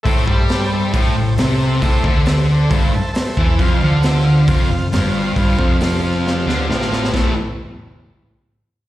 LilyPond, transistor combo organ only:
\new Staff \with { instrumentName = "Transistor combo organ" } { \time 4/4 \key a \minor \tempo 4 = 135 << { r1 | r2 r8 a''8 e''4 | r1 | r1 |
r1 | } \\ { <a' c'' e''>4 <a' c'' g''>8 <a' c'' e''>8 <a' c'' g''>4 <a' c'' e''>4 | <a' c'' e''>4 <a' c'' e''>8 <a' c'' d''>8 <a' c'' e''>4 <a' c''>4 | <f' c'' f''>4 <f' c'' e''>8 <f' c'' f''>8 <f' c'' f''>4 <f' c'' f''>4 | <f' c'' f''>4 <f' c'' f''>8 <f' c'' f''>8 <f' c'' f''>4 <f' c'' f''>4 |
<a' c'' e''>8 r2. r8 | } >> }